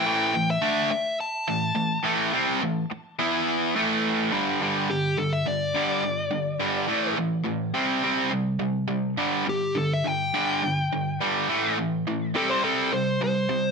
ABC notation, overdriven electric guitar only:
X:1
M:4/4
L:1/8
Q:1/4=105
K:Gmix
V:1 name="Overdriven electric guitar" clef=bass
[A,,E,A,] [A,,E,] [D,A,D] z2 [A,,E,] [A,,E,] [A,,E,A,] | [C,G,C] [A,,E,] z [E,B,E]2 [A,,E,A,]2 [G,,D,G,] | [G,,D,G,] [G,,D,] [G,,D,] [G,,D,] [G,,D,G,] [G,,D,] [G,,D,] [G,,D,G,] | [A,,E,A,] [A,,E,] [A,,E,] [C,G,C] [C,G,C] [C,G,] [C,G,] [C,G,] |
[G,,D,G,] [G,,D,] [G,,D,] [G,,D,] [G,,D,G,] [G,,D,] [G,,D,] [G,,D,G,] | [A,,E,A,] [A,,E,] [A,,E,] [C,G,C] [C,G,C] [C,G,] [C,G,] [C,G,] |]